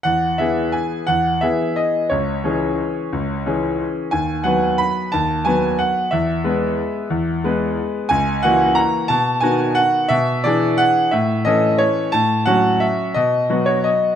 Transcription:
<<
  \new Staff \with { instrumentName = "Grand piano" } { \time 3/4 \key e \major \tempo 4 = 178 fis''4 e''4 gis''4 | fis''4 e''4 dis''4 | cis''2.~ | cis''2~ cis''8 r8 |
gis''4 fis''4 b''4 | a''4 gis''4 fis''4 | e''2.~ | e''2~ e''8 r8 |
gis''4 fis''4 ais''4 | a''4 gis''4 fis''4 | e''4 d''4 fis''4 | e''4 dis''4 cis''4 |
a''4 fis''4 e''4 | dis''4. cis''8 dis''4 | }
  \new Staff \with { instrumentName = "Grand piano" } { \time 3/4 \key e \major e,4 <e b gis'>2 | e,4 <e b gis'>2 | cis,4 <e cis' gis'>2 | cis,4 <e cis' gis'>2 |
dis,4 <fis b b'>2 | dis,4 <fis b b'>2 | e,4 <gis b b'>2 | e,4 <gis b b'>2 |
cis,4 <e ais fis'>2 | b,4 <dis b fis'>2 | b,4 <e d' gis'>2 | a,4 <e cis' a'>2 |
a,4 <fis cis' fis'>2 | b,4 <fis b fis'>2 | }
>>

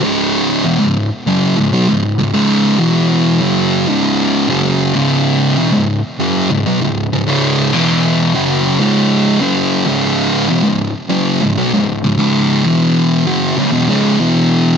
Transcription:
\new Staff \with { instrumentName = "Distorted electric guitar" } { \clef bass \time 4/4 \key cis \minor \tempo 4 = 97 <cis, gis, cis>4 <e, b,>16 <cis, gis,>8 r16 <fis, cis fis>8 <cis, gis,>16 <b, fis>16 <cis, gis,>8 <cis, gis,>16 <cis, gis, cis>16~ | <cis, gis, cis>8 <e, b, e>4 <fis, cis fis>8. <cis, gis, cis>4 <fis, cis fis>8. | <cis, gis, cis>4 <e, b,>16 <cis, gis,>8 r16 <fis, cis fis>8 <cis, gis,>16 <b, fis>16 <cis, gis,>8 <cis, gis,>16 <cis, gis, cis>16~ | <cis, gis, cis>8 <e, b, e>4 <fis, cis fis>8. <cis, gis, cis>4 <fis, cis fis>8. |
<cis, gis, cis>4 <e, b,>16 <cis, gis,>8 r16 <fis, cis fis>8 <cis, gis,>16 <b, fis>16 <cis, gis,>8 <cis, gis,>16 <cis, gis, cis>16~ | <cis, gis, cis>8 <e, b, e>4 <fis, cis fis>8 <cis, gis,>16 <e, b,>16 <cis, gis, cis>8 <e, b, e>4 | }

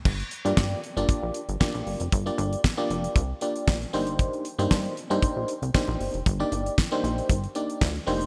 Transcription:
<<
  \new Staff \with { instrumentName = "FM electric piano" } { \time 4/4 \key g \minor \tempo 4 = 116 r8. <bes d' f' g' d''>8. r16 <bes d' f' g' d''>8. r8 <bes d' f' g' d''>8. r16 | r16 <bes d' f' g' d''>8. r16 <bes d' f' g' d''>8. r8 <bes d' f' g' d''>8. r16 <bes d' ees' g' c''>8~ | <bes d' ees' g' c''>8 r16 <bes d' ees' g' c''>8. r16 <bes d' ees' g' c''>8. r8 <bes d' ees' g' c''>8. r16 | r16 <bes d' ees' g' d''>8. r16 <bes d' ees' g' c''>8. r8 <bes d' ees' g' d''>8. r16 <bes d' ees' g' c''>8 | }
  \new Staff \with { instrumentName = "Analog synth bass" } { \clef bass \time 4/4 \key g \minor g,,8 r16 g,16 g,8 r16 g,,16 r16 bes,,16 r16 g,,16 r16 bes,,16 g,,16 f,,16 | g,,8 g,,8 r8 f,,8 c,8 r8 bes,,8 g,,8~ | g,,8 r16 g,16 g,8 r16 g,16 r16 bes,,16 r16 c,16 r16 bes,,16 g,,16 f,,16 | g,,8 g,,8 r8 bes,,8 g,,8 r8 d,8 f,,8 | }
  \new DrumStaff \with { instrumentName = "Drums" } \drummode { \time 4/4 <cymc bd>16 hh16 hh16 hh16 <bd sn>8 hh16 hh16 <hh bd>8 hh16 hh16 <bd sn>16 hh16 hho16 hh16 | <hh bd>16 hh16 hh16 hh16 <bd sn>8 hh16 hh16 <hh bd>8 hh16 hh16 <bd sn>16 hh16 hho16 hh16 | <hh bd>16 hh16 hh16 hh16 <bd sn>16 hh16 hh16 hh16 <hh bd>8 hh16 hh16 <bd sn>8 hho16 hh16 | <hh bd>8 hh16 hh16 <bd sn>8 hh16 hh16 <hh bd>16 hh16 hh16 hh16 <bd sn>16 hh16 hho16 hh16 | }
>>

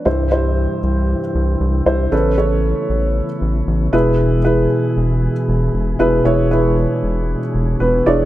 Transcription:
<<
  \new Staff \with { instrumentName = "Upright piano" } { \time 4/4 \key e \mixolydian \tempo 4 = 116 <e' g' c''>8 <e' g' c''>4. r4. <e' g' c''>8 | <cis' a' b'>8 <cis' a' cis''>4. r4. <e' gis' b'>8~ | <e' gis' b'>8 <e' gis' b'>4. r4. <e' gis' b'>8 | <e' gis' cis''>8 <e' gis' b'>4. r4 <b b'>8 <d' e' gis' cis'' d''>8 | }
  \new Staff \with { instrumentName = "Upright piano" } { \clef bass \time 4/4 \key e \mixolydian g,4. r2 r8 | r2. r8 b,8~ | b,4 r2 r8 b,8~ | b,4 r2. | }
  \new Staff \with { instrumentName = "Tonewheel organ" } { \time 4/4 \key e \mixolydian e'1 | b2.~ b8 r8 | r2. r8 d'8~ | d'1 | }
  \new Staff \with { instrumentName = "Tonewheel organ" } { \clef bass \time 4/4 \key e \mixolydian << { <c g g'>1 | <cis a>2.~ <cis a>8 <b, gis gis'>8~ | <b, gis gis'>1~ | <b, gis gis'>1 | } \\ { e1~ | e2.~ e8 e8~ | e1~ | e1 | } >> }
  \new Staff \with { instrumentName = "Analog synth bass" } { \clef bass \time 4/4 \key e \mixolydian c,4~ c,16 r16 c,8. r16 c,8 c,8 c,8 | a,,4~ a,,16 r16 a,,8. r16 a,,8 a,,8 e,,8~ | e,,4~ e,,16 r16 e,,8. r16 e,,8 e,,8 e,,8 | e,,4~ e,,16 r16 e,,8. r16 e,,8 e,,8 e,,8 | }
>>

